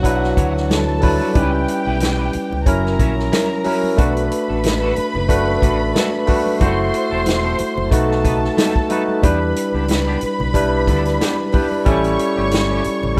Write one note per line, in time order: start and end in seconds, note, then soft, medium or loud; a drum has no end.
0.00 0.30 B1 medium
0.00 0.03 F#3 medium
0.00 0.88 F#3 medium
0.00 0.04 D4 medium
0.00 0.05 E4 medium
0.00 0.66 F#4 medium
0.00 0.06 B4 loud
0.00 0.66 F#5 medium
0.04 0.89 D4 medium
0.04 0.89 E4 medium
0.04 0.90 B4 loud
0.04 muted clean electric guitar stroke soft
0.04 kick medium
0.04 closed hi-hat medium
0.04 muted conga soft
0.23 muted clean electric guitar stroke soft
0.23 snare soft
0.37 1.17 D2 medium
0.37 0.52 E4 medium
0.37 0.53 F#4 medium
0.37 0.53 C#5 medium
0.37 kick medium
0.37 closed hi-hat medium
0.37 low conga medium
0.56 muted clean electric guitar stroke medium
0.56 snare soft
0.69 1.34 A4 medium
0.69 1.34 A5 medium
0.69 muted clean electric guitar stroke soft
0.69 snare loud
0.69 closed hi-hat medium
0.69 high conga medium
0.89 muted clean electric guitar stroke soft
1.01 1.30 F#3 medium
1.01 1.31 D4 medium
1.01 1.31 E4 medium
1.01 1.15 E4 medium
1.01 1.15 F#4 medium
1.01 1.31 B4 medium
1.01 1.15 B4 medium
1.01 kick medium
1.01 open hi-hat medium
1.01 high conga medium
1.20 1.32 E4 soft
1.20 1.31 F#4 medium
1.20 1.31 B4 medium
1.20 high conga soft
1.34 1.63 C#2 medium
1.34 2.47 G3 medium
1.34 2.47 C#4 medium
1.34 1.43 D#4 medium
1.34 1.50 E4 medium
1.34 2.64 G4 medium
1.34 1.51 G4 medium
1.34 2.48 B4 medium
1.34 1.51 B4 medium
1.34 2.64 G5 medium
1.34 kick loud
1.34 closed hi-hat medium
1.34 muted conga medium
1.42 2.51 E4 medium
1.53 muted clean electric guitar stroke soft
1.68 muted clean electric guitar stroke soft
1.68 closed hi-hat medium
1.86 2.26 B1 medium
1.86 1.97 E4 medium
1.86 1.96 G4 soft
1.86 1.96 B4 medium
2.00 muted clean electric guitar stroke soft
2.00 snare loud
2.00 closed hi-hat medium
2.00 high conga medium
2.19 2.32 E4 medium
2.19 2.32 G4 medium
2.19 2.32 B4 medium
2.33 muted clean electric guitar stroke soft
2.33 muted fingered electric bass stroke medium
2.33 closed hi-hat medium
2.33 muted conga soft
2.51 2.65 C#2 medium
2.51 muted clean electric guitar stroke soft
2.51 low conga medium
2.66 2.94 F#1 loud
2.66 3.51 F#3 medium
2.66 3.51 C#4 medium
2.66 3.52 E4 medium
2.66 3.95 A#4 medium
2.66 3.52 A#4 loud
2.66 3.95 A#5 medium
2.66 muted clean electric guitar stroke soft
2.66 kick medium
2.66 closed hi-hat medium
2.66 muted conga medium
2.85 muted clean electric guitar stroke soft
2.85 snare soft
2.99 3.27 A#1 loud
2.99 3.14 C#4 medium
2.99 3.15 E4 medium
2.99 3.15 C#5 medium
2.99 kick medium
2.99 closed hi-hat medium
2.99 muted conga soft
2.99 low conga medium
3.18 muted clean electric guitar stroke soft
3.18 snare soft
3.32 3.47 C#4 medium
3.32 3.47 E4 medium
3.32 3.48 A#4 medium
3.32 snare loud
3.32 closed hi-hat medium
3.32 high conga medium
3.50 muted clean electric guitar stroke soft
3.64 3.93 F#3 medium
3.64 3.76 C#4 medium
3.64 3.93 C#4 medium
3.64 3.77 E4 medium
3.64 3.94 E4 medium
3.64 3.77 A#4 medium
3.64 3.94 A#4 medium
3.64 open hi-hat medium
3.64 high conga medium
3.83 muted clean electric guitar stroke soft
3.83 high conga medium
3.97 4.26 B1 loud
3.97 5.09 A3 medium
3.97 5.10 D4 medium
3.97 4.13 D4 medium
3.97 5.10 F#4 medium
3.97 4.13 F#4 medium
3.97 4.13 A4 medium
3.97 6.57 B4 medium
3.97 5.11 B4 medium
3.97 6.57 B5 loud
3.97 kick loud
3.97 closed hi-hat loud
3.97 muted conga medium
4.17 closed hi-hat medium
4.31 muted clean electric guitar stroke soft
4.31 closed hi-hat medium
4.49 4.89 A1 medium
4.49 4.60 D4 soft
4.49 4.59 F#4 soft
4.49 4.59 A4 medium
4.64 muted clean electric guitar stroke soft
4.64 snare loud
4.64 closed hi-hat medium
4.64 high conga medium
4.81 4.95 D4 medium
4.81 4.94 F#4 medium
4.81 4.94 A4 medium
4.96 muted clean electric guitar stroke soft
4.96 muted fingered electric bass stroke medium
4.96 closed hi-hat medium
4.96 muted conga medium
5.15 5.55 F#1 loud
5.15 muted clean electric guitar stroke soft
5.15 low conga medium
5.28 6.13 A3 medium
5.28 6.14 D4 medium
5.28 6.14 F#4 medium
5.28 6.15 B4 medium
5.28 kick medium
5.28 closed hi-hat medium
5.28 muted conga soft
5.48 muted clean electric guitar stroke soft
5.62 5.90 A1 medium
5.62 5.77 D4 medium
5.62 5.77 F#4 medium
5.62 5.78 B4 medium
5.62 kick medium
5.62 closed hi-hat medium
5.62 muted conga soft
5.62 low conga medium
5.95 6.09 D4 medium
5.95 6.10 F#4 medium
5.95 6.10 A4 medium
5.95 snare loud
5.95 closed hi-hat medium
5.95 high conga medium
6.13 muted clean electric guitar stroke soft
6.27 6.55 A3 medium
6.27 6.56 D4 medium
6.27 6.39 D4 medium
6.27 6.56 F#4 medium
6.27 6.40 F#4 medium
6.27 6.40 A4 medium
6.27 6.57 B4 medium
6.27 kick medium
6.27 open hi-hat medium
6.27 high conga medium
6.46 muted clean electric guitar stroke soft
6.46 high conga medium
6.60 6.88 F#1 loud
6.60 6.67 G3 medium
6.60 6.75 C4 medium
6.60 7.73 E4 medium
6.60 6.76 E4 medium
6.60 7.73 F#4 medium
6.60 6.76 A4 medium
6.60 7.90 C5 medium
6.60 7.74 C5 loud
6.60 7.90 C6 medium
6.60 kick loud
6.60 closed hi-hat loud
6.60 muted conga medium
6.66 7.75 A3 medium
6.78 muted clean electric guitar stroke soft
6.94 muted clean electric guitar stroke soft
6.94 closed hi-hat medium
7.11 7.51 E1 medium
7.11 7.22 C4 soft
7.11 7.22 E4 medium
7.11 7.21 A4 medium
7.26 muted clean electric guitar stroke soft
7.26 snare loud
7.26 closed hi-hat medium
7.26 high conga medium
7.44 7.57 C4 medium
7.44 7.57 E4 medium
7.44 7.57 A4 medium
7.58 muted clean electric guitar stroke soft
7.58 muted fingered electric bass stroke soft
7.58 closed hi-hat medium
7.58 muted conga soft
7.77 7.90 F#1 medium
7.77 muted clean electric guitar stroke soft
7.77 low conga medium
7.91 8.46 B1 loud
7.91 8.76 A3 medium
7.91 8.76 D#4 medium
7.91 8.77 F#4 medium
7.91 9.21 A4 medium
7.91 8.77 B4 medium
7.91 9.21 A5 medium
7.91 muted clean electric guitar stroke soft
7.91 kick medium
7.91 closed hi-hat medium
7.91 muted conga soft
8.10 muted clean electric guitar stroke soft
8.10 snare soft
8.24 8.39 B3 medium
8.24 8.39 D#4 medium
8.24 8.40 B4 medium
8.24 kick medium
8.24 closed hi-hat medium
8.24 low conga medium
8.43 muted clean electric guitar stroke soft
8.43 snare soft
8.57 8.72 B3 medium
8.57 8.73 D#4 medium
8.57 8.73 A4 medium
8.57 snare loud
8.57 closed hi-hat medium
8.57 high conga medium
8.76 muted clean electric guitar stroke soft
8.76 kick medium
8.89 9.18 A3 medium
8.89 9.02 B3 medium
8.89 9.19 D#4 medium
8.89 9.02 D#4 medium
8.89 9.19 F#4 medium
8.89 9.03 A4 medium
8.89 9.19 B4 medium
8.89 closed hi-hat medium
8.89 high conga medium
9.08 muted clean electric guitar stroke soft
9.08 high conga soft
9.22 9.51 E2 loud
9.22 10.35 G3 medium
9.22 9.38 B3 medium
9.22 10.35 D4 medium
9.22 9.38 D4 medium
9.22 10.36 E4 medium
9.22 9.38 G4 medium
9.22 11.83 B4 medium
9.22 10.36 B4 medium
9.22 11.82 B5 medium
9.22 kick loud
9.22 closed hi-hat loud
9.22 muted conga medium
9.41 muted clean electric guitar stroke soft
9.56 muted clean electric guitar stroke soft
9.56 closed hi-hat medium
9.74 10.14 C#2 medium
9.74 9.85 B3 soft
9.74 9.84 D4 soft
9.74 9.84 G4 medium
9.88 muted clean electric guitar stroke soft
9.88 snare loud
9.88 closed hi-hat medium
9.88 high conga medium
10.07 10.20 B3 medium
10.07 10.20 D4 medium
10.07 10.20 G4 medium
10.21 muted fingered electric bass stroke medium
10.21 muted clean electric guitar stroke soft
10.21 closed hi-hat medium
10.21 muted conga soft
10.40 10.87 B1 medium
10.40 muted clean electric guitar stroke medium
10.40 low conga medium
10.54 11.39 G3 medium
10.54 11.39 D4 medium
10.54 11.40 E4 medium
10.54 11.40 B4 medium
10.54 muted clean electric guitar stroke soft
10.54 kick medium
10.54 closed hi-hat medium
10.54 muted conga soft
10.73 muted clean electric guitar stroke soft
10.87 11.15 D2 loud
10.87 11.03 B3 medium
10.87 11.03 D4 medium
10.87 11.03 A4 medium
10.87 kick medium
10.87 closed hi-hat medium
10.87 muted conga soft
10.87 low conga medium
11.05 muted clean electric guitar stroke soft
11.05 snare soft
11.05 closed hi-hat soft
11.21 11.35 B3 medium
11.21 11.36 D4 medium
11.21 11.36 G4 medium
11.21 snare loud
11.21 closed hi-hat medium
11.21 high conga medium
11.52 11.81 G3 medium
11.52 11.65 B3 medium
11.52 11.82 D4 medium
11.52 11.66 D4 medium
11.52 11.82 E4 medium
11.52 11.66 G4 medium
11.52 11.83 B4 medium
11.52 kick medium
11.52 open hi-hat medium
11.52 high conga medium
11.71 muted clean electric guitar stroke soft
11.71 high conga medium
11.85 12.14 A1 loud
11.85 12.98 G3 medium
11.85 12.01 A3 medium
11.85 12.99 C#4 medium
11.85 12.01 C#4 medium
11.85 12.99 E4 medium
11.85 12.02 G4 medium
11.85 12.99 A4 medium
11.85 13.16 C#5 medium
11.85 13.16 C#6 medium
11.85 kick loud
11.85 closed hi-hat medium
11.85 muted conga medium
12.04 closed hi-hat medium
12.19 muted clean electric guitar stroke soft
12.19 closed hi-hat medium
12.37 12.77 G1 medium
12.37 12.48 A3 soft
12.37 12.47 C#4 medium
12.37 12.47 G4 medium
12.51 muted clean electric guitar stroke soft
12.51 snare loud
12.51 closed hi-hat medium
12.51 high conga medium
12.70 12.83 A3 medium
12.70 12.83 C#4 medium
12.70 12.82 G4 medium
12.84 muted fingered electric bass stroke soft
12.84 closed hi-hat medium
12.84 muted conga soft
13.03 13.20 A1 medium
13.03 muted clean electric guitar stroke soft
13.03 low conga medium
13.17 13.20 G3 medium